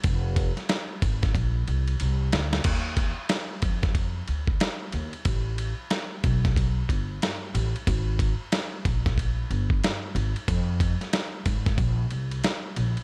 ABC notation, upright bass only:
X:1
M:4/4
L:1/16
Q:"Swing 16ths" 1/4=92
K:Eb
V:1 name="Upright bass" clef=bass
F,,,3 z3 A,,,2 B,,,2 C,,2 C,,2 D,,2 | E,,3 z3 F,,4 D,,2 z2 E,, z | =A,,,3 z3 =B,,,4 G,,,2 z2 A,,, z | A,,,3 z3 B,,,4 G,,,2 z2 A,,, z |
F,,3 z3 A,,2 B,,,2 C,,2 z2 B,,, z |]